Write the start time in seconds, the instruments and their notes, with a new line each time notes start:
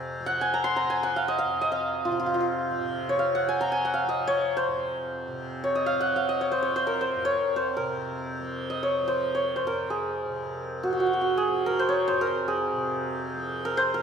Already playing: tanpura F2 C3 F3, santur G#5 A#5
0.19 tanpura F3
0.26 santur F#5
0.41 santur G#5
0.54 santur A#5
0.64 santur C6
0.76 santur A#5
0.84 tanpura F3
0.90 santur G#5
1.03 santur F#5
1.16 santur F5
1.28 santur D#5
1.38 santur F5
1.45 tanpura F2
1.61 santur D#5
1.72 santur F5
2.05 tanpura C3, santur F4
2.12 santur F4
2.20 santur F4
2.26 santur F4
2.34 santur F4
2.40 santur F4
2.69 tanpura F3
2.80 tanpura C3
3.09 santur C#5
3.19 santur F5
3.35 santur F#5
3.43 tanpura F3
3.49 santur G#5
3.61 santur A#5
3.72 santur G#5
3.85 santur F#5
3.94 santur F5
4.04 tanpura F3
4.09 santur D#5
4.27 santur C#5
4.57 santur C5
4.67 tanpura F2
5.28 tanpura C3
5.64 santur C#5
5.75 santur D#5
5.86 santur F5
5.92 tanpura F3
6.01 santur F#5
6.16 santur F5
6.29 santur D#5
6.41 santur C#5
6.52 tanpura F3, santur C5
6.63 santur C#5
6.76 santur C5
6.87 santur A#4
7.01 santur C5
7.16 tanpura F2
7.25 santur C#5
7.56 santur C5
7.77 tanpura C3, santur A#4
8.40 tanpura F3
8.70 santur D#5
8.83 santur C#5
9.02 tanpura F3
9.08 santur C5
9.35 santur C#5
9.56 santur C5
9.63 tanpura F2, santur A#4
9.90 santur G#4
10.26 tanpura C3
10.83 santur F#4
10.88 tanpura F3
10.93 santur F#4
11.00 santur F#4
11.07 santur F#4
11.13 santur F#4
11.21 santur F#4
11.37 santur G#4
11.48 tanpura F3
11.66 santur A#4
11.79 santur C5
11.89 santur C#5
12.08 tanpura F2, santur C5
12.21 santur A#4
12.48 santur G#4
12.72 tanpura C3
13.34 tanpura F3
13.65 santur A#4
13.77 santur C5
13.94 tanpura F3, santur A#4